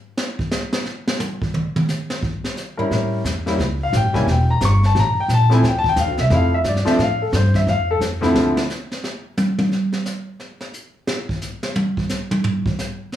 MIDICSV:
0, 0, Header, 1, 5, 480
1, 0, Start_track
1, 0, Key_signature, -1, "minor"
1, 0, Tempo, 340716
1, 255, Time_signature, 4, 2, 24, 8
1, 18541, End_track
2, 0, Start_track
2, 0, Title_t, "Grand piano"
2, 0, Program_c, 0, 0
2, 3909, Note_on_c, 0, 61, 67
2, 3909, Note_on_c, 0, 70, 68
2, 3910, Note_on_c, 0, 55, 67
2, 3917, Note_on_c, 0, 64, 76
2, 4536, Note_off_c, 0, 55, 0
2, 4536, Note_off_c, 0, 61, 0
2, 4536, Note_off_c, 0, 70, 0
2, 4540, Note_off_c, 0, 64, 0
2, 4875, Note_on_c, 0, 55, 70
2, 4877, Note_on_c, 0, 58, 64
2, 4892, Note_on_c, 0, 64, 74
2, 4894, Note_on_c, 0, 61, 61
2, 5037, Note_off_c, 0, 55, 0
2, 5037, Note_off_c, 0, 58, 0
2, 5045, Note_off_c, 0, 64, 0
2, 5046, Note_off_c, 0, 61, 0
2, 5401, Note_on_c, 0, 77, 90
2, 5552, Note_off_c, 0, 77, 0
2, 5586, Note_on_c, 0, 79, 87
2, 5819, Note_on_c, 0, 55, 72
2, 5830, Note_on_c, 0, 58, 65
2, 5832, Note_on_c, 0, 64, 76
2, 5833, Note_on_c, 0, 61, 70
2, 5851, Note_on_c, 0, 80, 96
2, 5856, Note_off_c, 0, 79, 0
2, 5988, Note_off_c, 0, 55, 0
2, 5994, Note_off_c, 0, 58, 0
2, 5995, Note_off_c, 0, 61, 0
2, 5995, Note_off_c, 0, 64, 0
2, 6017, Note_off_c, 0, 80, 0
2, 6076, Note_on_c, 0, 79, 74
2, 6340, Note_off_c, 0, 79, 0
2, 6346, Note_on_c, 0, 82, 90
2, 6504, Note_off_c, 0, 82, 0
2, 6552, Note_on_c, 0, 85, 112
2, 6818, Note_off_c, 0, 85, 0
2, 6842, Note_on_c, 0, 81, 92
2, 6992, Note_off_c, 0, 81, 0
2, 7034, Note_on_c, 0, 82, 99
2, 7299, Note_off_c, 0, 82, 0
2, 7331, Note_on_c, 0, 79, 88
2, 7477, Note_off_c, 0, 79, 0
2, 7521, Note_on_c, 0, 81, 102
2, 7744, Note_on_c, 0, 53, 71
2, 7745, Note_on_c, 0, 57, 67
2, 7754, Note_on_c, 0, 60, 71
2, 7761, Note_on_c, 0, 64, 79
2, 7782, Note_off_c, 0, 81, 0
2, 7801, Note_on_c, 0, 80, 94
2, 7910, Note_off_c, 0, 53, 0
2, 7910, Note_off_c, 0, 57, 0
2, 7914, Note_off_c, 0, 60, 0
2, 7918, Note_off_c, 0, 64, 0
2, 7951, Note_off_c, 0, 80, 0
2, 8001, Note_on_c, 0, 79, 74
2, 8123, Note_off_c, 0, 79, 0
2, 8150, Note_on_c, 0, 81, 101
2, 8277, Note_off_c, 0, 81, 0
2, 8298, Note_on_c, 0, 79, 89
2, 8431, Note_off_c, 0, 79, 0
2, 8439, Note_on_c, 0, 77, 83
2, 8720, Note_off_c, 0, 77, 0
2, 8741, Note_on_c, 0, 76, 93
2, 8877, Note_on_c, 0, 53, 52
2, 8881, Note_on_c, 0, 57, 50
2, 8888, Note_on_c, 0, 60, 48
2, 8892, Note_on_c, 0, 64, 64
2, 8900, Note_off_c, 0, 76, 0
2, 8935, Note_on_c, 0, 77, 95
2, 9156, Note_off_c, 0, 53, 0
2, 9159, Note_off_c, 0, 57, 0
2, 9162, Note_off_c, 0, 60, 0
2, 9164, Note_off_c, 0, 64, 0
2, 9208, Note_off_c, 0, 77, 0
2, 9219, Note_on_c, 0, 76, 91
2, 9378, Note_off_c, 0, 76, 0
2, 9417, Note_on_c, 0, 74, 83
2, 9648, Note_on_c, 0, 53, 82
2, 9656, Note_on_c, 0, 60, 77
2, 9657, Note_on_c, 0, 57, 80
2, 9660, Note_on_c, 0, 62, 90
2, 9684, Note_on_c, 0, 76, 86
2, 9688, Note_off_c, 0, 74, 0
2, 9820, Note_off_c, 0, 53, 0
2, 9824, Note_off_c, 0, 60, 0
2, 9825, Note_off_c, 0, 57, 0
2, 9826, Note_off_c, 0, 62, 0
2, 9850, Note_off_c, 0, 76, 0
2, 9896, Note_on_c, 0, 77, 91
2, 10168, Note_off_c, 0, 77, 0
2, 10170, Note_on_c, 0, 69, 61
2, 10333, Note_off_c, 0, 69, 0
2, 10364, Note_on_c, 0, 72, 77
2, 10641, Note_off_c, 0, 72, 0
2, 10646, Note_on_c, 0, 76, 81
2, 10811, Note_off_c, 0, 76, 0
2, 10835, Note_on_c, 0, 77, 96
2, 11116, Note_off_c, 0, 77, 0
2, 11140, Note_on_c, 0, 69, 91
2, 11238, Note_off_c, 0, 69, 0
2, 11566, Note_on_c, 0, 38, 81
2, 11572, Note_on_c, 0, 57, 71
2, 11577, Note_on_c, 0, 53, 73
2, 11580, Note_on_c, 0, 60, 80
2, 11585, Note_on_c, 0, 64, 95
2, 12058, Note_off_c, 0, 38, 0
2, 12061, Note_off_c, 0, 57, 0
2, 12064, Note_off_c, 0, 53, 0
2, 12065, Note_off_c, 0, 60, 0
2, 12068, Note_off_c, 0, 64, 0
2, 18541, End_track
3, 0, Start_track
3, 0, Title_t, "Upright bass"
3, 0, Program_c, 1, 32
3, 4094, Note_on_c, 1, 45, 75
3, 4561, Note_off_c, 1, 45, 0
3, 4570, Note_on_c, 1, 40, 88
3, 5039, Note_off_c, 1, 40, 0
3, 5049, Note_on_c, 1, 37, 89
3, 5518, Note_off_c, 1, 37, 0
3, 5531, Note_on_c, 1, 33, 90
3, 5682, Note_on_c, 1, 31, 55
3, 5703, Note_off_c, 1, 33, 0
3, 5836, Note_off_c, 1, 31, 0
3, 5844, Note_on_c, 1, 28, 65
3, 5998, Note_off_c, 1, 28, 0
3, 6008, Note_on_c, 1, 28, 81
3, 6477, Note_off_c, 1, 28, 0
3, 6490, Note_on_c, 1, 31, 94
3, 6958, Note_off_c, 1, 31, 0
3, 6971, Note_on_c, 1, 33, 90
3, 7247, Note_off_c, 1, 33, 0
3, 7443, Note_on_c, 1, 34, 81
3, 7913, Note_off_c, 1, 34, 0
3, 7928, Note_on_c, 1, 38, 78
3, 8390, Note_off_c, 1, 38, 0
3, 8399, Note_on_c, 1, 40, 92
3, 8553, Note_off_c, 1, 40, 0
3, 8553, Note_on_c, 1, 38, 59
3, 8705, Note_off_c, 1, 38, 0
3, 8713, Note_on_c, 1, 36, 72
3, 8870, Note_off_c, 1, 36, 0
3, 8879, Note_on_c, 1, 41, 89
3, 9350, Note_off_c, 1, 41, 0
3, 9360, Note_on_c, 1, 43, 79
3, 9647, Note_off_c, 1, 43, 0
3, 9836, Note_on_c, 1, 45, 80
3, 10308, Note_off_c, 1, 45, 0
3, 10320, Note_on_c, 1, 43, 102
3, 10790, Note_off_c, 1, 43, 0
3, 10801, Note_on_c, 1, 41, 94
3, 11270, Note_off_c, 1, 41, 0
3, 11278, Note_on_c, 1, 41, 77
3, 11748, Note_off_c, 1, 41, 0
3, 11773, Note_on_c, 1, 38, 80
3, 12064, Note_off_c, 1, 38, 0
3, 18541, End_track
4, 0, Start_track
4, 0, Title_t, "Muted upright bass strokes"
4, 7255, Note_on_c, 9, 29, 46
4, 7396, Note_off_c, 9, 29, 0
4, 9661, Note_on_c, 9, 29, 46
4, 9802, Note_off_c, 9, 29, 0
4, 18541, End_track
5, 0, Start_track
5, 0, Title_t, "Drums"
5, 246, Note_on_c, 9, 38, 83
5, 387, Note_off_c, 9, 38, 0
5, 550, Note_on_c, 9, 36, 69
5, 691, Note_off_c, 9, 36, 0
5, 722, Note_on_c, 9, 44, 55
5, 725, Note_on_c, 9, 38, 90
5, 863, Note_off_c, 9, 44, 0
5, 866, Note_off_c, 9, 38, 0
5, 1023, Note_on_c, 9, 38, 80
5, 1164, Note_off_c, 9, 38, 0
5, 1203, Note_on_c, 9, 38, 44
5, 1344, Note_off_c, 9, 38, 0
5, 1514, Note_on_c, 9, 38, 99
5, 1655, Note_off_c, 9, 38, 0
5, 1687, Note_on_c, 9, 44, 51
5, 1690, Note_on_c, 9, 48, 85
5, 1828, Note_off_c, 9, 44, 0
5, 1831, Note_off_c, 9, 48, 0
5, 1996, Note_on_c, 9, 36, 74
5, 2136, Note_off_c, 9, 36, 0
5, 2171, Note_on_c, 9, 47, 84
5, 2312, Note_off_c, 9, 47, 0
5, 2480, Note_on_c, 9, 47, 94
5, 2621, Note_off_c, 9, 47, 0
5, 2655, Note_on_c, 9, 44, 55
5, 2658, Note_on_c, 9, 38, 42
5, 2796, Note_off_c, 9, 44, 0
5, 2799, Note_off_c, 9, 38, 0
5, 2958, Note_on_c, 9, 38, 92
5, 3099, Note_off_c, 9, 38, 0
5, 3136, Note_on_c, 9, 36, 78
5, 3277, Note_off_c, 9, 36, 0
5, 3442, Note_on_c, 9, 38, 42
5, 3583, Note_off_c, 9, 38, 0
5, 3619, Note_on_c, 9, 44, 52
5, 3621, Note_on_c, 9, 38, 41
5, 3760, Note_off_c, 9, 44, 0
5, 3762, Note_off_c, 9, 38, 0
5, 3928, Note_on_c, 9, 43, 45
5, 4069, Note_off_c, 9, 43, 0
5, 4097, Note_on_c, 9, 36, 22
5, 4105, Note_on_c, 9, 25, 47
5, 4105, Note_on_c, 9, 38, 46
5, 4238, Note_off_c, 9, 36, 0
5, 4245, Note_off_c, 9, 38, 0
5, 4577, Note_on_c, 9, 36, 21
5, 4581, Note_on_c, 9, 44, 57
5, 4584, Note_on_c, 9, 38, 59
5, 4718, Note_off_c, 9, 36, 0
5, 4722, Note_off_c, 9, 44, 0
5, 4725, Note_off_c, 9, 38, 0
5, 4884, Note_on_c, 9, 38, 38
5, 5025, Note_off_c, 9, 38, 0
5, 5057, Note_on_c, 9, 36, 25
5, 5062, Note_off_c, 9, 25, 0
5, 5062, Note_on_c, 9, 25, 51
5, 5062, Note_on_c, 9, 38, 45
5, 5198, Note_off_c, 9, 36, 0
5, 5203, Note_off_c, 9, 38, 0
5, 5536, Note_on_c, 9, 36, 17
5, 5538, Note_on_c, 9, 44, 57
5, 5541, Note_on_c, 9, 38, 67
5, 5677, Note_off_c, 9, 36, 0
5, 5679, Note_off_c, 9, 44, 0
5, 5682, Note_off_c, 9, 38, 0
5, 5838, Note_on_c, 9, 36, 57
5, 5844, Note_on_c, 9, 38, 42
5, 5979, Note_off_c, 9, 36, 0
5, 5985, Note_off_c, 9, 38, 0
5, 6013, Note_on_c, 9, 36, 27
5, 6022, Note_off_c, 9, 25, 0
5, 6022, Note_on_c, 9, 25, 39
5, 6022, Note_on_c, 9, 38, 41
5, 6154, Note_off_c, 9, 36, 0
5, 6163, Note_off_c, 9, 38, 0
5, 6493, Note_on_c, 9, 36, 26
5, 6493, Note_on_c, 9, 44, 64
5, 6496, Note_on_c, 9, 38, 65
5, 6633, Note_off_c, 9, 36, 0
5, 6634, Note_off_c, 9, 44, 0
5, 6637, Note_off_c, 9, 38, 0
5, 6807, Note_on_c, 9, 38, 37
5, 6947, Note_off_c, 9, 38, 0
5, 6975, Note_on_c, 9, 36, 26
5, 6981, Note_off_c, 9, 25, 0
5, 6981, Note_on_c, 9, 25, 55
5, 6981, Note_on_c, 9, 38, 47
5, 7115, Note_off_c, 9, 36, 0
5, 7122, Note_off_c, 9, 38, 0
5, 7450, Note_on_c, 9, 36, 21
5, 7455, Note_on_c, 9, 44, 54
5, 7457, Note_on_c, 9, 38, 63
5, 7591, Note_off_c, 9, 36, 0
5, 7595, Note_off_c, 9, 44, 0
5, 7598, Note_off_c, 9, 38, 0
5, 7763, Note_on_c, 9, 38, 42
5, 7903, Note_off_c, 9, 38, 0
5, 7931, Note_on_c, 9, 36, 21
5, 7941, Note_off_c, 9, 25, 0
5, 7941, Note_on_c, 9, 25, 50
5, 7941, Note_on_c, 9, 38, 47
5, 8072, Note_off_c, 9, 36, 0
5, 8082, Note_off_c, 9, 38, 0
5, 8231, Note_on_c, 9, 36, 74
5, 8372, Note_off_c, 9, 36, 0
5, 8402, Note_on_c, 9, 44, 58
5, 8404, Note_on_c, 9, 36, 24
5, 8404, Note_on_c, 9, 38, 59
5, 8543, Note_off_c, 9, 44, 0
5, 8545, Note_off_c, 9, 36, 0
5, 8545, Note_off_c, 9, 38, 0
5, 8699, Note_on_c, 9, 38, 40
5, 8840, Note_off_c, 9, 38, 0
5, 8878, Note_off_c, 9, 25, 0
5, 8878, Note_on_c, 9, 25, 49
5, 8878, Note_on_c, 9, 38, 52
5, 8882, Note_on_c, 9, 36, 20
5, 9019, Note_off_c, 9, 38, 0
5, 9023, Note_off_c, 9, 36, 0
5, 9357, Note_on_c, 9, 44, 47
5, 9360, Note_on_c, 9, 38, 63
5, 9362, Note_on_c, 9, 36, 16
5, 9498, Note_off_c, 9, 44, 0
5, 9501, Note_off_c, 9, 38, 0
5, 9503, Note_off_c, 9, 36, 0
5, 9522, Note_on_c, 9, 38, 30
5, 9663, Note_off_c, 9, 38, 0
5, 9665, Note_on_c, 9, 38, 43
5, 9683, Note_off_c, 9, 38, 0
5, 9683, Note_on_c, 9, 38, 48
5, 9824, Note_off_c, 9, 38, 0
5, 9842, Note_on_c, 9, 36, 25
5, 9844, Note_off_c, 9, 25, 0
5, 9844, Note_on_c, 9, 25, 54
5, 9844, Note_on_c, 9, 38, 47
5, 9983, Note_off_c, 9, 36, 0
5, 9985, Note_off_c, 9, 38, 0
5, 10322, Note_on_c, 9, 36, 20
5, 10325, Note_on_c, 9, 44, 55
5, 10327, Note_on_c, 9, 38, 61
5, 10462, Note_off_c, 9, 36, 0
5, 10465, Note_off_c, 9, 44, 0
5, 10468, Note_off_c, 9, 38, 0
5, 10626, Note_on_c, 9, 36, 63
5, 10629, Note_on_c, 9, 38, 41
5, 10767, Note_off_c, 9, 36, 0
5, 10769, Note_off_c, 9, 38, 0
5, 10806, Note_on_c, 9, 36, 19
5, 10812, Note_off_c, 9, 25, 0
5, 10812, Note_on_c, 9, 25, 52
5, 10812, Note_on_c, 9, 38, 47
5, 10947, Note_off_c, 9, 36, 0
5, 10953, Note_off_c, 9, 38, 0
5, 11286, Note_on_c, 9, 36, 22
5, 11286, Note_on_c, 9, 44, 59
5, 11288, Note_on_c, 9, 38, 65
5, 11426, Note_off_c, 9, 44, 0
5, 11427, Note_off_c, 9, 36, 0
5, 11429, Note_off_c, 9, 38, 0
5, 11593, Note_on_c, 9, 38, 48
5, 11734, Note_off_c, 9, 38, 0
5, 11770, Note_on_c, 9, 38, 93
5, 11911, Note_off_c, 9, 38, 0
5, 12075, Note_on_c, 9, 38, 93
5, 12143, Note_off_c, 9, 25, 0
5, 12216, Note_off_c, 9, 38, 0
5, 12252, Note_on_c, 9, 44, 51
5, 12255, Note_on_c, 9, 38, 43
5, 12393, Note_off_c, 9, 44, 0
5, 12396, Note_off_c, 9, 38, 0
5, 12560, Note_on_c, 9, 38, 46
5, 12701, Note_off_c, 9, 38, 0
5, 12734, Note_on_c, 9, 38, 51
5, 12875, Note_off_c, 9, 38, 0
5, 13206, Note_on_c, 9, 44, 50
5, 13209, Note_on_c, 9, 48, 91
5, 13347, Note_off_c, 9, 44, 0
5, 13350, Note_off_c, 9, 48, 0
5, 13504, Note_on_c, 9, 48, 94
5, 13645, Note_off_c, 9, 48, 0
5, 13690, Note_on_c, 9, 38, 33
5, 13830, Note_off_c, 9, 38, 0
5, 13983, Note_on_c, 9, 38, 40
5, 14124, Note_off_c, 9, 38, 0
5, 14167, Note_on_c, 9, 44, 53
5, 14170, Note_on_c, 9, 38, 42
5, 14308, Note_off_c, 9, 44, 0
5, 14311, Note_off_c, 9, 38, 0
5, 14646, Note_on_c, 9, 38, 35
5, 14787, Note_off_c, 9, 38, 0
5, 14942, Note_on_c, 9, 38, 44
5, 15083, Note_off_c, 9, 38, 0
5, 15123, Note_on_c, 9, 44, 58
5, 15264, Note_off_c, 9, 44, 0
5, 15601, Note_on_c, 9, 38, 91
5, 15742, Note_off_c, 9, 38, 0
5, 15909, Note_on_c, 9, 36, 67
5, 16050, Note_off_c, 9, 36, 0
5, 16083, Note_on_c, 9, 44, 54
5, 16086, Note_on_c, 9, 38, 37
5, 16224, Note_off_c, 9, 44, 0
5, 16227, Note_off_c, 9, 38, 0
5, 16383, Note_on_c, 9, 38, 91
5, 16524, Note_off_c, 9, 38, 0
5, 16562, Note_on_c, 9, 48, 97
5, 16703, Note_off_c, 9, 48, 0
5, 16867, Note_on_c, 9, 36, 66
5, 17008, Note_off_c, 9, 36, 0
5, 17036, Note_on_c, 9, 44, 55
5, 17039, Note_on_c, 9, 38, 47
5, 17177, Note_off_c, 9, 44, 0
5, 17180, Note_off_c, 9, 38, 0
5, 17345, Note_on_c, 9, 48, 96
5, 17486, Note_off_c, 9, 48, 0
5, 17526, Note_on_c, 9, 43, 92
5, 17667, Note_off_c, 9, 43, 0
5, 17832, Note_on_c, 9, 36, 82
5, 17972, Note_off_c, 9, 36, 0
5, 18012, Note_on_c, 9, 44, 50
5, 18015, Note_on_c, 9, 38, 42
5, 18153, Note_off_c, 9, 44, 0
5, 18156, Note_off_c, 9, 38, 0
5, 18488, Note_on_c, 9, 38, 42
5, 18541, Note_off_c, 9, 38, 0
5, 18541, End_track
0, 0, End_of_file